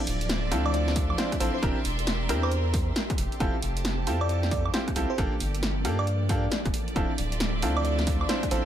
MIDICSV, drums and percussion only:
0, 0, Header, 1, 2, 480
1, 0, Start_track
1, 0, Key_signature, -1, "minor"
1, 0, Tempo, 444444
1, 1755, Time_signature, 4, 2, 24, 8
1, 9343, End_track
2, 0, Start_track
2, 0, Title_t, "Drums"
2, 76, Note_on_c, 9, 46, 109
2, 184, Note_off_c, 9, 46, 0
2, 228, Note_on_c, 9, 42, 67
2, 318, Note_off_c, 9, 42, 0
2, 318, Note_on_c, 9, 38, 126
2, 318, Note_on_c, 9, 42, 69
2, 426, Note_off_c, 9, 38, 0
2, 426, Note_off_c, 9, 42, 0
2, 557, Note_on_c, 9, 46, 109
2, 665, Note_off_c, 9, 46, 0
2, 709, Note_on_c, 9, 76, 74
2, 798, Note_on_c, 9, 42, 63
2, 817, Note_off_c, 9, 76, 0
2, 906, Note_off_c, 9, 42, 0
2, 949, Note_on_c, 9, 38, 65
2, 1035, Note_on_c, 9, 36, 107
2, 1035, Note_on_c, 9, 46, 111
2, 1057, Note_off_c, 9, 38, 0
2, 1143, Note_off_c, 9, 36, 0
2, 1143, Note_off_c, 9, 46, 0
2, 1189, Note_on_c, 9, 76, 58
2, 1277, Note_on_c, 9, 38, 121
2, 1277, Note_on_c, 9, 42, 68
2, 1297, Note_off_c, 9, 76, 0
2, 1385, Note_off_c, 9, 38, 0
2, 1385, Note_off_c, 9, 42, 0
2, 1427, Note_on_c, 9, 36, 60
2, 1429, Note_on_c, 9, 37, 57
2, 1429, Note_on_c, 9, 42, 66
2, 1517, Note_on_c, 9, 46, 110
2, 1535, Note_off_c, 9, 36, 0
2, 1537, Note_off_c, 9, 37, 0
2, 1537, Note_off_c, 9, 42, 0
2, 1625, Note_off_c, 9, 46, 0
2, 1755, Note_on_c, 9, 36, 123
2, 1758, Note_on_c, 9, 37, 55
2, 1758, Note_on_c, 9, 42, 61
2, 1863, Note_off_c, 9, 36, 0
2, 1866, Note_off_c, 9, 37, 0
2, 1866, Note_off_c, 9, 42, 0
2, 1997, Note_on_c, 9, 46, 105
2, 2105, Note_off_c, 9, 46, 0
2, 2148, Note_on_c, 9, 42, 65
2, 2236, Note_off_c, 9, 42, 0
2, 2236, Note_on_c, 9, 38, 127
2, 2236, Note_on_c, 9, 42, 66
2, 2344, Note_off_c, 9, 38, 0
2, 2344, Note_off_c, 9, 42, 0
2, 2476, Note_on_c, 9, 46, 109
2, 2584, Note_off_c, 9, 46, 0
2, 2628, Note_on_c, 9, 76, 74
2, 2716, Note_on_c, 9, 42, 63
2, 2736, Note_off_c, 9, 76, 0
2, 2824, Note_off_c, 9, 42, 0
2, 2955, Note_on_c, 9, 36, 110
2, 2956, Note_on_c, 9, 46, 107
2, 3063, Note_off_c, 9, 36, 0
2, 3064, Note_off_c, 9, 46, 0
2, 3196, Note_on_c, 9, 38, 127
2, 3196, Note_on_c, 9, 42, 63
2, 3304, Note_off_c, 9, 38, 0
2, 3304, Note_off_c, 9, 42, 0
2, 3347, Note_on_c, 9, 36, 110
2, 3347, Note_on_c, 9, 37, 55
2, 3347, Note_on_c, 9, 42, 62
2, 3435, Note_on_c, 9, 46, 101
2, 3455, Note_off_c, 9, 36, 0
2, 3455, Note_off_c, 9, 37, 0
2, 3455, Note_off_c, 9, 42, 0
2, 3543, Note_off_c, 9, 46, 0
2, 3588, Note_on_c, 9, 42, 35
2, 3675, Note_off_c, 9, 42, 0
2, 3675, Note_on_c, 9, 36, 127
2, 3675, Note_on_c, 9, 37, 54
2, 3675, Note_on_c, 9, 42, 65
2, 3783, Note_off_c, 9, 36, 0
2, 3783, Note_off_c, 9, 37, 0
2, 3783, Note_off_c, 9, 42, 0
2, 3915, Note_on_c, 9, 46, 97
2, 4023, Note_off_c, 9, 46, 0
2, 4068, Note_on_c, 9, 42, 63
2, 4155, Note_off_c, 9, 42, 0
2, 4155, Note_on_c, 9, 38, 127
2, 4155, Note_on_c, 9, 42, 66
2, 4263, Note_off_c, 9, 38, 0
2, 4263, Note_off_c, 9, 42, 0
2, 4395, Note_on_c, 9, 46, 104
2, 4503, Note_off_c, 9, 46, 0
2, 4549, Note_on_c, 9, 76, 77
2, 4636, Note_on_c, 9, 42, 64
2, 4657, Note_off_c, 9, 76, 0
2, 4744, Note_off_c, 9, 42, 0
2, 4787, Note_on_c, 9, 38, 67
2, 4875, Note_on_c, 9, 36, 112
2, 4875, Note_on_c, 9, 46, 101
2, 4895, Note_off_c, 9, 38, 0
2, 4983, Note_off_c, 9, 36, 0
2, 4983, Note_off_c, 9, 46, 0
2, 5027, Note_on_c, 9, 76, 61
2, 5116, Note_on_c, 9, 38, 127
2, 5116, Note_on_c, 9, 42, 67
2, 5135, Note_off_c, 9, 76, 0
2, 5224, Note_off_c, 9, 38, 0
2, 5224, Note_off_c, 9, 42, 0
2, 5268, Note_on_c, 9, 36, 65
2, 5268, Note_on_c, 9, 37, 56
2, 5268, Note_on_c, 9, 42, 64
2, 5356, Note_on_c, 9, 46, 101
2, 5376, Note_off_c, 9, 36, 0
2, 5376, Note_off_c, 9, 37, 0
2, 5376, Note_off_c, 9, 42, 0
2, 5464, Note_off_c, 9, 46, 0
2, 5596, Note_on_c, 9, 36, 122
2, 5596, Note_on_c, 9, 37, 50
2, 5596, Note_on_c, 9, 42, 63
2, 5704, Note_off_c, 9, 36, 0
2, 5704, Note_off_c, 9, 37, 0
2, 5704, Note_off_c, 9, 42, 0
2, 5837, Note_on_c, 9, 46, 100
2, 5945, Note_off_c, 9, 46, 0
2, 5989, Note_on_c, 9, 42, 62
2, 6078, Note_off_c, 9, 42, 0
2, 6078, Note_on_c, 9, 38, 127
2, 6078, Note_on_c, 9, 42, 69
2, 6186, Note_off_c, 9, 38, 0
2, 6186, Note_off_c, 9, 42, 0
2, 6316, Note_on_c, 9, 46, 101
2, 6424, Note_off_c, 9, 46, 0
2, 6469, Note_on_c, 9, 76, 81
2, 6557, Note_on_c, 9, 42, 63
2, 6577, Note_off_c, 9, 76, 0
2, 6665, Note_off_c, 9, 42, 0
2, 6795, Note_on_c, 9, 36, 114
2, 6797, Note_on_c, 9, 46, 98
2, 6903, Note_off_c, 9, 36, 0
2, 6905, Note_off_c, 9, 46, 0
2, 7037, Note_on_c, 9, 38, 125
2, 7037, Note_on_c, 9, 42, 66
2, 7145, Note_off_c, 9, 38, 0
2, 7145, Note_off_c, 9, 42, 0
2, 7187, Note_on_c, 9, 36, 108
2, 7188, Note_on_c, 9, 37, 53
2, 7188, Note_on_c, 9, 42, 68
2, 7276, Note_on_c, 9, 46, 100
2, 7295, Note_off_c, 9, 36, 0
2, 7296, Note_off_c, 9, 37, 0
2, 7296, Note_off_c, 9, 42, 0
2, 7384, Note_off_c, 9, 46, 0
2, 7429, Note_on_c, 9, 42, 36
2, 7515, Note_on_c, 9, 36, 123
2, 7516, Note_off_c, 9, 42, 0
2, 7516, Note_on_c, 9, 37, 50
2, 7516, Note_on_c, 9, 42, 66
2, 7623, Note_off_c, 9, 36, 0
2, 7624, Note_off_c, 9, 37, 0
2, 7624, Note_off_c, 9, 42, 0
2, 7755, Note_on_c, 9, 46, 103
2, 7863, Note_off_c, 9, 46, 0
2, 7907, Note_on_c, 9, 42, 65
2, 7995, Note_off_c, 9, 42, 0
2, 7995, Note_on_c, 9, 38, 127
2, 7995, Note_on_c, 9, 42, 70
2, 8103, Note_off_c, 9, 38, 0
2, 8103, Note_off_c, 9, 42, 0
2, 8234, Note_on_c, 9, 46, 105
2, 8342, Note_off_c, 9, 46, 0
2, 8387, Note_on_c, 9, 76, 84
2, 8475, Note_on_c, 9, 42, 64
2, 8495, Note_off_c, 9, 76, 0
2, 8583, Note_off_c, 9, 42, 0
2, 8626, Note_on_c, 9, 38, 66
2, 8714, Note_on_c, 9, 36, 104
2, 8714, Note_on_c, 9, 46, 104
2, 8734, Note_off_c, 9, 38, 0
2, 8822, Note_off_c, 9, 36, 0
2, 8822, Note_off_c, 9, 46, 0
2, 8867, Note_on_c, 9, 76, 63
2, 8954, Note_on_c, 9, 38, 125
2, 8954, Note_on_c, 9, 42, 66
2, 8975, Note_off_c, 9, 76, 0
2, 9062, Note_off_c, 9, 38, 0
2, 9062, Note_off_c, 9, 42, 0
2, 9106, Note_on_c, 9, 36, 64
2, 9106, Note_on_c, 9, 37, 53
2, 9106, Note_on_c, 9, 42, 67
2, 9193, Note_on_c, 9, 46, 103
2, 9214, Note_off_c, 9, 36, 0
2, 9214, Note_off_c, 9, 37, 0
2, 9214, Note_off_c, 9, 42, 0
2, 9301, Note_off_c, 9, 46, 0
2, 9343, End_track
0, 0, End_of_file